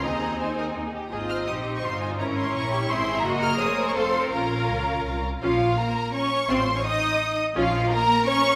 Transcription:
<<
  \new Staff \with { instrumentName = "Violin section" } { \time 3/4 \key aes \major \tempo 4 = 168 bes''4 aes''4 r4 | r8 f'''8 ees'''8. des'''16 c'''8 aes''8 | bes''8 c'''8 des'''4 c'''8. bes''16 | \key bes \minor r8 f'''8 ees'''8. des'''16 c'''4 |
bes''2~ bes''8 r8 | f''4 bes''4 des'''4 | c'''8. des'''16 ees'''4. r8 | f''4 bes''4 des'''4 | }
  \new Staff \with { instrumentName = "Violin section" } { \time 3/4 \key aes \major << { ees''4 c''8 bes'8. aes'16 g'8 | ees''2 c''4 | des''2 e''4 | \key bes \minor ees''4 des''4 f''4 |
f''2~ f''8 r8 | f'4 bes'4 des''4 | c''8. des''16 ees''4. r8 | f'4 bes'4 des''4 | } \\ { aes'4 r2 | aes'8 c''2~ c''8 | bes'4 bes'8 g'8 aes'4 | bes'4 c''2 |
bes'2~ bes'8 r8 | r2. | r2. | r2. | } >> }
  \new Staff \with { instrumentName = "Viola section" } { \time 3/4 \key aes \major << { ees'4 ees'4 ees'8 r8 | ees'4 g'4 f'4 | e'4 e'2 | \key bes \minor ges'8 aes'8 bes'4 a'8 f'8 |
f'2~ f'8 r8 | f'8 r2 r8 | f'8 r2 r8 | f'8 r2 r8 | } \\ { c'4 c'4 bes8 r8 | c'2 ees'4 | des'2 c'4 | bes2 c'4 |
des'2~ des'8 r8 | des'8 r2 r8 | c'8 r2 r8 | des'8 r2 r8 | } >> }
  \new Staff \with { instrumentName = "Cello section" } { \time 3/4 \key aes \major ees'2~ ees'8 r8 | f'4 ees'2 | des'2 e'4 | \key bes \minor ges'4 aes'4 a'4 |
bes'2~ bes'8 r8 | f4 bes4 des'4 | c'8. des'16 ees'4. r8 | f4 bes4 des'4 | }
  \new Staff \with { instrumentName = "Double bass section" } { \clef bass \time 3/4 \key aes \major ees,2 ees,8 r8 | aes,,4 bes,,4 g,,4 | aes,,4 bes,,4 aes,,4 | \key bes \minor ges,,4 f,,4 f,,4 |
bes,,4 des,4 c,4 | bes,,4 r2 | a,,4 r2 | bes,,4 r2 | }
>>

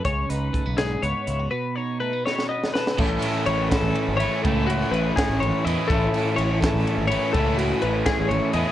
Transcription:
<<
  \new Staff \with { instrumentName = "Clean electric guitar" } { \time 6/8 \key a \lydian \tempo 4. = 83 cis''8 b'4 gis'8 cis''4 | b'8 cis''8 b'8 cis''8 dis''8 b'8 | a'4 cis''8 a'4 cis''8 | a'8 fis'8 b'8 gis'8 cis''8 dis''8 |
a'4 cis''8 a'4 cis''8 | a'8 fis'8 b'8 gis'8 cis''8 dis''8 | }
  \new Staff \with { instrumentName = "Clean electric guitar" } { \time 6/8 \key a \lydian << { r8 dis'8 a16 b8. b8 e'16 fis'16 | r8 dis'8 a16 b8. b8 a'8 | r8 e'4 cis'4 b'8 | r8 e'4 cis'4 b'8 |
r8 e'4 cis'4 b'8 | r8 e'4 cis'4 b'8 | } \\ { cis4. gis,4. | b,4. b,4. | a,4 e4 e4 | a,4 e4 e4 |
a,4 e4 e4 | a,4 e4 e4 | } >> }
  \new Staff \with { instrumentName = "Overdriven electric guitar" } { \time 6/8 \key a \lydian r2. | r2. | <a, e a cis' e'>2~ <a, e a cis' e'>8 <a, e a cis' e'>8 | <a, e a cis' e'>2~ <a, e a cis' e'>8 <a, e a cis' e'>8 |
<a, e a cis' e'>2~ <a, e a cis' e'>8 <a, e a cis' e'>8 | <a, e a cis' e'>2~ <a, e a cis' e'>8 <a, e a cis' e'>8 | }
  \new Staff \with { instrumentName = "Fingered electric bass" } { \clef bass \time 6/8 \key a \lydian cis,8 cis,8 r16 b,,8. cis,16 r16 cis,8 | r2. | a,,8 r8 a,,8. a,,16 r16 gis,,8 r16 | cis,4 a,,8 r16 a,,16 gis,,16 r16 e,16 r16 |
a,,8 r8 a,,8. a,,16 r16 gis,,8 r16 | cis,4 a,,8 r16 a,,16 gis,,16 r16 e,16 r16 | }
  \new DrumStaff \with { instrumentName = "Drums" } \drummode { \time 6/8 <hh bd>8 hh8 <hh bd>8 <hh sn>8 hh8 hh8 | r4. sn16 sn8 sn16 sn16 sn16 | <cymc bd>8 cymr8 cymr8 <bd cymr sn>8 cymr8 cymr8 | <bd cymr>8 cymr8 cymr8 <bd cymr sn>8 cymr8 cymr8 |
<bd cymr>8 cymr8 cymr8 <bd cymr sn>8 cymr8 cymr8 | <bd cymr>8 cymr8 cymr8 <bd cymr sn>8 cymr8 cymr8 | }
>>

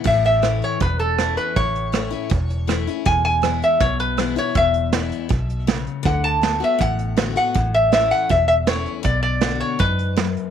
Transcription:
<<
  \new Staff \with { instrumentName = "Resonator guitar played with a steel bar" } { \time 4/4 \key a \major \tempo 4 = 160 e''8 e''4 cis''8 b'8 a'4 b'8 | cis''2.~ cis''8 r8 | gis''8 gis''4 e''8 cis''8 b'4 cis''8 | e''2.~ e''8 r8 |
fis''8 a''4 e''8 fis''4. fis''8~ | fis''8 e''8 e''8 fis''8 e''8 e''8 cis''8. r16 | d''8 d''4 cis''8 b'4. r8 | }
  \new Staff \with { instrumentName = "Steel-string acoustic guitar" } { \time 4/4 \key a \major << { r4 <e a cis' e'>4 r4 <e a cis' e'>4 | r4 <e a cis' e'>8 <cis' e'>8 r4 <e a cis' e'>8 <cis' e'>8 | r4 <e gis b e'>4 r4 <e gis b e'>8 <b e'>8 | r4 <e gis b e'>4 r2 |
r4 <d a b fis'>8 <b fis'>8 r4 <d a b fis'>8 <b fis'>8 | r4 <e a cis' e'>4 r4 <e a cis' e'>4 | r4 <d b d' fis'>4 r2 | } \\ { a,2 e,2 | a,2 e,2 | e,2 b,2 | e,2 b,4 cis4 |
d2 a,2 | a,2 e,2 | b,2 gis,4 fis,4 | } >> }
  \new Staff \with { instrumentName = "Fingered electric bass" } { \clef bass \time 4/4 \key a \major a,,2 e,,2 | a,,2 e,,2 | e,,2 b,,2 | e,,2 b,,2 |
d,2 a,,2 | a,,2 e,,2 | b,,2 fis,2 | }
  \new DrumStaff \with { instrumentName = "Drums" } \drummode { \time 4/4 <cymc bd>8 hh8 <hh ss>8 hh8 <hh bd>8 hh8 <hh ss>8 hh8 | <hh bd>8 hh8 <hh ss>8 hh8 <hh bd>8 hh8 <hh ss>8 hh8 | <hh bd>8 hh8 <hh ss>8 hh8 <hh bd>8 hh8 <hh ss>8 hh8 | <hh bd>8 hh8 <hh sn>8 hh8 <hh bd>8 hh8 <hh sn>8 hh8 |
<hh bd>8 hh8 <hh sn>8 hh8 <hh bd>8 hh8 <hh sn>8 hh8 | <hh bd>8 hh8 <hh sn>8 hh8 <hh bd>8 hh8 <hh sn>8 hh8 | <hh bd>8 hh8 <hh sn>8 hh8 <hh bd>8 hh8 <hh sn>8 hh8 | }
>>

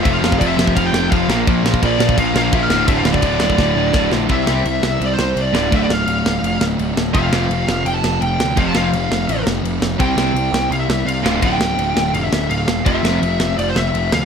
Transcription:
<<
  \new Staff \with { instrumentName = "Lead electric guitar" } { \time 4/4 \key d \minor \tempo 4 = 168 e''16 f''8. d''16 e''8. f''16 g''8. f''8. r16 | r4 d''4 f''8 f''8 e''16 f''8. | e''16 f''8 d''8. d''2 r8 | e''2 d''16 c''8. d''4 |
e''16 d''16 f''2 r4. | f''2 g''16 a''8. g''4 | f''16 a''16 f''2 r4. | g''2 f''16 e''8. f''4 |
g''2 f''16 e''8. f''4 | e''2 d''16 c''16 e''4 f''8 | }
  \new Staff \with { instrumentName = "Distorted electric guitar" } { \clef bass \time 4/4 \key d \minor <f, c f>8 <f, c f>8 <f, c f>8 <f, c f>8 <f, c f>8 <f, c f>8 <f, c f>8 <bes, f bes>8 | <bes, f bes>8 <bes, f bes>8 <bes, f bes>8 <bes, f bes>8 <bes, f bes>8 <bes, f bes>8 <bes, f bes>8 <d, a, d>8 | <d, a, d>8 <d, a, d>8 <d, a, d>8 <d, a, d>8 <d, a, d>8 <d, a, d>8 <d, a, d>8 <d, a, d>8 | <c g c' e' g' c''>2.~ <c g c' e' g' c''>8 <d, a, d a f'>8~ |
<d, a, d a f'>2.~ <d, a, d a f'>8 r8 | <f, c f a c' f'>1 | <f, c f a c' f'>1 | <c g c' e' g' c''>2.~ <c g c' e' g' c''>8 <d, a, d a f'>8~ |
<d, a, d a f'>2.~ <d, a, d a f'>8 r8 | <f, c f a c' f'>1 | }
  \new Staff \with { instrumentName = "Overdriven electric guitar" } { \clef bass \time 4/4 \key d \minor <f, c f>8 <f, c f>8 <f, c f>8 <f, c f>8 <f, c f>8 <f, c f>8 <f, c f>8 <bes, f bes>8 | <bes, f bes>8 <bes, f bes>8 <bes, f bes>8 <bes, f bes>8 <bes, f bes>8 <bes, f bes>8 <bes, f bes>8 <d, a, d>8 | <d, a, d>8 <d, a, d>8 <d, a, d>8 <d, a, d>8 <d, a, d>8 <d, a, d>8 <d, a, d>8 <d, a, d>8 | <c g c'>8 <c g c'>8 r2 r8 <d, a, d>8 |
<d, a, d>8 r2. r8 | <f, c f>8 <f, c f>8 r2. | <f, c f>8 <f, c f>8 r2. | <c g c'>8 <c g c'>8 r2 r8 <d, a, d>8 |
<d, a, d>8 r2. r8 | <f, c f>8 <f, c f>8 r2. | }
  \new Staff \with { instrumentName = "Overdriven electric guitar" } { \clef bass \time 4/4 \key d \minor <f, c f>8 <f, c f>8 <f, c f>8 <f, c f>8 <f, c f>8 <f, c f>8 <f, c f>8 <bes, f bes>8 | <bes, f bes>8 <bes, f bes>8 <bes, f bes>8 <bes, f bes>8 <bes, f bes>8 <bes, f bes>8 <bes, f bes>8 <d, a, d>8 | <d, a, d>8 <d, a, d>8 <d, a, d>8 <d, a, d>8 <d, a, d>8 <d, a, d>8 <d, a, d>8 <d, a, d>8 | <c g c'>8 <c g c'>8 r2 r8 <d, a, d>8 |
<d, a, d>8 r2. r8 | <f, c f>8 <f, c f>8 r2. | <f, c f>8 <f, c f>8 r2. | <c g c'>8 <c g c'>8 r2 r8 <d, a, d>8 |
<d, a, d>8 r2. r8 | <f, c f>8 <f, c f>8 r2. | }
  \new Staff \with { instrumentName = "Picked electric bass" } { \clef bass \time 4/4 \key d \minor f,,8 f,,8 f,,8 f,,8 f,,8 f,,8 f,,8 bes,,8 | bes,,4 bes,,8 bes,,8 bes,,8 bes,,8 bes,,8 d,,8 | d,,8 d,,8 d,,8 d,,8 d,,8 d,,8 d,,8 bes,,8 | c,8 c,8 c,8 c,8 c,8 c,8 c,8 d,,8 |
d,,8 d,,8 d,,8 d,,8 f,,8 d,,8 d,,8 d,,8 | f,,8 f,,8 f,,8 f,,8 f,,8 f,,8 f,,8 d,8 | f,,8 f,,8 f,,8 f,,8 a,,8 f,,8 f,,8 f,,8 | c,8 c,8 c,8 c,8 c,8 c,8 c,8 d,,8 |
d,,8 d,,8 d,,8 d,,8 f,,8 d,,8 d,,8 e,,8 | f,,8 f,,8 f,,8 f,,8 f,,8 f,,8 f,,8 d,8 | }
  \new DrumStaff \with { instrumentName = "Drums" } \drummode { \time 4/4 <cymc bd>8 sn16 bd16 <cymc bd>8 sn16 bd16 <cymc bd>8 sn8 <cymc bd>8 sn8 | <cymc bd>8 sn16 bd16 <cymc bd>8 sn16 bd16 <cymc bd>8 sn8 <cymc bd>8 sn8 | <cymc bd>8 sn16 bd16 <cymc bd>8 sn16 bd16 <bd sn>4 <bd sn>8 sn8 | <cymc bd>8 sn8 cymc8 sn8 cymc8 sn8 cymc8 sn8 |
<cymc bd>8 sn8 cymc8 sn8 cymc8 sn8 cymc8 sn8 | <cymc bd>8 sn8 cymc8 sn8 cymc8 sn8 cymc8 sn8 | <cymc bd>8 sn8 cymc8 sn8 cymc8 sn8 cymc8 sn8 | <cymc bd>8 sn8 cymc8 sn8 cymc8 sn8 cymc8 sn8 |
<cymc bd>8 sn8 cymc8 sn8 cymc8 sn8 cymc8 sn8 | <cymc bd>8 sn8 cymc8 sn8 cymc8 sn8 cymc8 sn8 | }
>>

